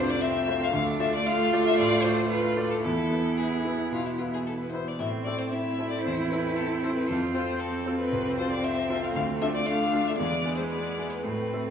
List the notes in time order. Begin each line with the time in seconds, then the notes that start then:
Already playing: C2 F2 A3 C4 D4 F4 C5
0.10 D5
0.21 C4 E5
0.47 A3 F4 C5
0.63 F5
0.72 D2 A3 D4 F5
0.99 A3 F4 D5 E5
1.15 D5
1.25 F4 F5
1.53 A3 F4 D5
1.67 E5
1.78 A2 D5
2.03 A3 F4 C5 D5
2.29 F4 B4
2.57 A3 F4 D5
2.70 A4
2.83 E2 B3 E4 A4
3.11 B3 E4 B4
3.37 G#4
3.65 B3 E4 B4
3.91 B2 F4
4.05 E4
4.18 B3 E4 F4 B4
4.34 G#4
4.46 A4
4.62 B4
4.71 B3 E4 B4 C5
4.88 D5
4.99 A2 C4 E5
5.24 C4 E4 A4 D5
5.39 C5
5.50 E4 E5
5.79 C4 E4 A4
5.90 D5
6.03 E2 C5
6.29 C4 E4 A4 B4
6.56 A4
6.81 C4 E4 A4 C5
6.95 B4
7.07 F2 F4 A4
7.34 C4 F4 A4 C5
7.59 C4 A4
7.86 C4 F4 A4
7.97 B4
8.12 C2
8.37 C4 F4 A4 C5
8.51 D5
8.64 E5
8.89 C4 F4 A4
9.03 F5
9.15 D2 A3 F5
9.41 D4 F4 A4 E5
9.55 D5
9.66 D4 F5
9.92 D4 F4 A4
10.07 E5
10.18 E2 G#3 B3 D5
10.45 B3 E4 G#4
10.56 C5
10.71 D5
10.98 B3 E4 G#4
11.12 B4
11.23 A2 A3 C4 B4
11.53 C4 E4 A4